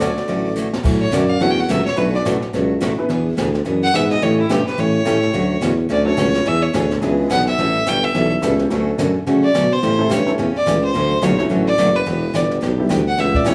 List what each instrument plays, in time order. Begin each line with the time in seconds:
Already playing: tuba D2, hollow-body jazz guitar A3, fiddle D5
0.00 steel-string acoustic guitar D3 F#3 A3 C#4 F#4, honky-tonk piano D4 F#4 A4 C#5, snare, hi-hat pedal
0.17 snare
0.28 tuba A1, steel-string acoustic guitar D3 F#3 A3 C#4 F#4, brush sweep, snare
0.56 steel-string acoustic guitar D3 F#3 A3 C#4 F#4, hi-hat pedal
0.73 snare
0.83 tuba A2, steel-string acoustic guitar D3 F#3 A3 C#4 F#4, brush sweep, kick, snare, crash
1.02 fiddle C#5
1.11 tuba F#2, steel-string acoustic guitar D3 F#3 A3 C#4 F#4, fiddle D5, snare, hi-hat pedal
1.30 fiddle F5
1.40 tuba E2, steel-string acoustic guitar D3 F#3 A3 C#4 F#4, honky-tonk piano D4 E4 F#4 A4 C#5, fiddle F#5, brush sweep, snare
1.51 fiddle G5
1.60 fiddle F#5
1.69 tuba C#2, steel-string acoustic guitar D3 F#3 A3 C#4 F#4, fiddle E5, snare, hi-hat pedal
1.85 fiddle C#5, snare
1.96 tuba B1, steel-string acoustic guitar B2 F#3 A3 D4 F#4, honky-tonk piano C#4 D4 E4 A4 B4, fiddle B4, brush sweep, snare
2.14 fiddle D5
2.25 tuba A1, steel-string acoustic guitar B2 F#3 A3 D4 F#4, snare, hi-hat pedal
2.42 tuba A1, snare
2.53 tuba C#2, steel-string acoustic guitar B2 F#3 A3 D4 F#4, brush sweep, snare
2.81 tuba A1, steel-string acoustic guitar B2 F#3 A3 D4 F#4, snare, hi-hat pedal
2.98 tuba A1, honky-tonk piano B3 D4 E4 G#4 B4
3.09 tuba E2, steel-string acoustic guitar E3 B3 D4 G#4, brush sweep, snare
3.37 tuba D2, steel-string acoustic guitar E3 B3 D4 G#4, snare, hi-hat pedal
3.55 snare
3.65 tuba F#2, steel-string acoustic guitar E3 B3 D4 G#4, brush sweep, snare
3.83 fiddle F#5
3.93 tuba G#2, steel-string acoustic guitar E3 B3 D4 G#4, honky-tonk piano B3 D4 E4 G#4 B4, fiddle E5, snare, hi-hat pedal
4.11 fiddle D#5, snare
4.22 tuba A2, steel-string acoustic guitar C#3 E3 A3 C#4 G4, fiddle C#5, brush sweep, snare
4.40 fiddle E4
4.49 tuba G2, steel-string acoustic guitar C#3 E3 A3 C#4 G4, fiddle G4, snare, hi-hat pedal
4.67 tuba G2, fiddle B4, snare
4.77 tuba A2, steel-string acoustic guitar C#3 E3 A3 C#4 G4, fiddle C#5, brush sweep, snare
5.05 tuba A2, steel-string acoustic guitar C#3 E3 A3 C#4 G4, honky-tonk piano A3 C#4 E4 G4 A4, snare, hi-hat pedal
5.23 snare
5.33 tuba D2, steel-string acoustic guitar D3 F#3 A3 C#4 F#4, brush sweep, snare
5.61 tuba E2, steel-string acoustic guitar D3 F#3 A3 C#4 F#4, snare, hi-hat pedal
5.89 tuba D2, steel-string acoustic guitar D3 F#3 A3 C#4 F#4, fiddle D5, brush sweep, snare
6.05 honky-tonk piano A3 C#4 D4 F#4 A4, fiddle C#5
6.17 tuba C#2, steel-string acoustic guitar D3 F#3 A3 C#4 F#4, snare, hi-hat pedal
6.34 snare
6.45 tuba E2, steel-string acoustic guitar E3 B3 D4 G#4, fiddle E5, brush sweep, snare
6.62 fiddle C#5
6.73 tuba D2, steel-string acoustic guitar E3 B3 D4 G#4, snare, hi-hat pedal
6.91 snare
7.01 tuba C#2, steel-string acoustic guitar E3 B3 D4 G#4, honky-tonk piano G#3 B3 D4 E4 G#4, brush sweep, snare
7.29 tuba B1, steel-string acoustic guitar E3 B3 D4 G#4, fiddle F#5, snare, hi-hat pedal
7.47 fiddle E5, snare
7.58 tuba A1, steel-string acoustic guitar E3 G3 C#4 E4 A4, brush sweep, snare
7.86 tuba G1, steel-string acoustic guitar E3 G3 C#4 E4 A4, fiddle G5, snare, hi-hat pedal
8.03 fiddle E5, snare
8.14 tuba B1, steel-string acoustic guitar E3 G3 C#4 E4 A4, brush sweep, snare
8.41 tuba C#2, steel-string acoustic guitar E3 G3 C#4 E4 A4, honky-tonk piano A3 B3 C#4 E4 G4, snare, hi-hat pedal
8.59 snare
8.70 tuba D2, steel-string acoustic guitar D3 F#3 A3 C#4 F#4, honky-tonk piano A3 C#4 D4 F#4 A4, brush sweep, snare
8.98 tuba F#2, steel-string acoustic guitar D3 F#3 A3 C#4 F#4, honky-tonk piano A3 C#4 D4 F#4 A4, snare, hi-hat pedal
9.27 tuba C#3, steel-string acoustic guitar D3 F#3 A3 C#4 F#4, brush sweep, snare
9.43 fiddle D5
9.54 tuba B2, steel-string acoustic guitar D3 F#3 A3 C#4 F#4, snare, hi-hat pedal
9.72 fiddle C5
9.82 tuba A2, steel-string acoustic guitar C#3 E3 A3 C#4 G4, brush sweep, snare
9.99 honky-tonk piano A3 C#4 E4 G4 A4
10.10 tuba G2, steel-string acoustic guitar C#3 E3 A3 C#4 G4, fiddle C#5, snare, hi-hat pedal
10.26 honky-tonk piano A3 C#4 E4 G4 A4, snare
10.38 tuba E2, steel-string acoustic guitar C#3 E3 A3 C#4 G4, brush sweep, snare
10.55 tuba E2, fiddle D5
10.66 tuba C#2, steel-string acoustic guitar C#3 E3 A3 C#4 G4, snare, hi-hat pedal
10.84 fiddle C5
10.94 tuba D2, steel-string acoustic guitar D3 F#3 A3 C#4 F#4, brush sweep, snare
11.21 tuba B1, steel-string acoustic guitar D3 F#3 A3 C#4 F#4, honky-tonk piano A#3 D4 D#4 F4 G4, fiddle C#5, snare, hi-hat pedal
11.38 honky-tonk piano A3 C#4 D4 E4 F#4, snare
11.49 tuba A1, steel-string acoustic guitar D3 F#3 A3 C#4 F#4, brush sweep, snare
11.67 fiddle D5
11.78 tuba F#1, steel-string acoustic guitar D3 F#3 A3 C#4 F#4, snare, hi-hat pedal
11.95 fiddle B4, snare
12.06 tuba E1, steel-string acoustic guitar E3 B3 D4 G4, brush sweep, snare
12.34 tuba G1, steel-string acoustic guitar E3 B3 D4 G4, fiddle D5, snare, hi-hat pedal
12.51 snare
12.61 tuba B1, steel-string acoustic guitar E3 B3 D4 G4, brush sweep, snare
12.78 honky-tonk piano G3 B3 D4 E4 G4
12.89 tuba D2, steel-string acoustic guitar E3 B3 D4 G4, snare, hi-hat pedal
13.08 fiddle F#5
13.18 tuba C#2, steel-string acoustic guitar C#3 E3 A3 C#4 G4, fiddle E5, brush sweep, snare
13.35 fiddle D5, kick
13.45 tuba E2, steel-string acoustic guitar C#3 E3 A3 C#4 G4, honky-tonk piano G3 A3 C#4 E4 G4, fiddle C#5, snare, hi-hat pedal